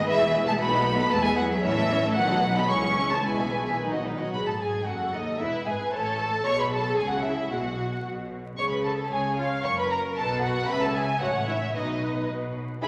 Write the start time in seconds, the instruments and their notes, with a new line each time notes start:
0.05 double bass section E1, cello section E3, viola section G#3 E4, violin section B4 E5
0.19 viola section B3 G#4, violin section G#4 E5
0.32 viola section G#3 E4, violin section B4
0.46 cello section A3, viola section B3 G#4, violin section G#4 E5 A5
0.59 double bass section B1, viola section A3 D#4, cello section B3, violin section F#4 B4 B5
0.72 viola section B3 F#4, violin section A4 D#5
0.84 viola section A3 D#4, violin section F#4 B4
0.96 viola section B3 F#4, violin section A4 D#5
1.10 double bass section E2, viola section G#3 E4, cello section A3, violin section B4 A5
1.23 cello section G#3, viola section B3 G#4, violin section G#4 E5 G#5
1.37 cello section F#3, viola section G#3 E4, violin section B4 F#5
1.49 viola section B3 G#4, violin section G#4 E5
1.61 double bass section A1, cello section E3, viola section C#4 E4, violin section C#5 E5
1.75 viola section A3 C#4, violin section A4 E5
1.90 viola section C#4 E4, violin section C#5
2.02 viola section A3 C#4, violin section A4 E5
2.15 double bass section B1, viola section D#3 D#4, cello section F#3, violin section F#4 B4 F#5
2.28 viola section F#3 F#4, violin section A4 D#5
2.41 viola section D#3 D#4, violin section F#4 B4
2.55 viola section F#3 F#4, cello section B3, violin section A4 D#5 B5
2.67 double bass section C#2, viola section G#3 E4, cello section C#4, violin section G#4 C#5 C#6
2.81 viola section E3 C#4, violin section G#4 C#5
2.96 viola section G#3 E4, violin section G#4 C#5
3.09 viola section E3 C#4, cello section A3, violin section G#4 C#5 A5
3.24 double bass section B1, cello section G#3, viola section G#3 E4, violin section B4 G#5
3.38 viola section E3 B3, violin section G#4 E5
3.51 viola section G#3 E4, violin section B4
3.65 viola section E3 B3, violin section G#4 E5
3.78 viola section D#3 D#4, violin section D#4 B4
3.92 viola section F#3 B3, violin section F#4 D#5
4.05 viola section D#3 D#4, violin section D#4 B4
4.19 viola section F#3 B3, violin section F#4 D#5
4.33 double bass section B1, cello section B2, viola section G#4, violin section B4 B5
4.46 cello section A2, violin section A4 A5
4.58 double bass section G#1, cello section G#2, violin section G#4 G#5
4.86 double bass section F#1, cello section F#2, violin section F#4 F#5, viola section A4
5.13 cello section D#2, double bass section D#2, violin section D#4 D#5
5.39 double bass section E1, cello section E2, violin section E4 E5, viola section B4
5.66 double bass section G#1, cello section G#2, violin section G#4 G#5
5.92 double bass section A1, cello section A2, violin section A4 A5, viola section C#5
6.20 viola section A4
6.45 double bass section B1, cello section B2, viola section G#4, violin section C#5 C#6
6.59 violin section B4 B5
6.72 violin section A4 A5
6.97 double bass section C#2, cello section C#3, violin section G#4 G#5
7.10 violin section F#4 F#5
7.25 violin section E4 E5
7.51 double bass section B1, cello section B2, viola section F#4, violin section F#4 F#5
8.05 double bass section B1, cello section B2
8.57 double bass section C#2, cello section C#3, viola section G#4, violin section C#5 C#6
8.70 violin section B4 B5
8.84 violin section A4 A5
9.11 double bass section C#2, cello section C#3, violin section G#4 G#5, viola section C#5
9.38 violin section F4 F5
9.63 double bass section F#1, cello section F#2, viola section A#4, violin section C#5 C#6
9.78 violin section B4 B5
9.91 violin section A#4 A#5
10.17 double bass section B1, cello section B2, violin section A4 A5, viola section B4
10.42 violin section F#4 F#5
10.68 double bass section C#2, cello section C#3, violin section B4 B5, viola section E5
10.82 violin section A4 A5
10.94 violin section G#4 G#5
11.20 double bass section A1, cello section A2, violin section F#4 F#5, viola section C#5
11.47 violin section E4 E5
11.74 double bass section B1, cello section B2, violin section D#4 D#5, viola section B4
12.29 double bass section B1, cello section B2
12.82 double bass section E1, cello section E2, violin section E4 G#4 B5, viola section B4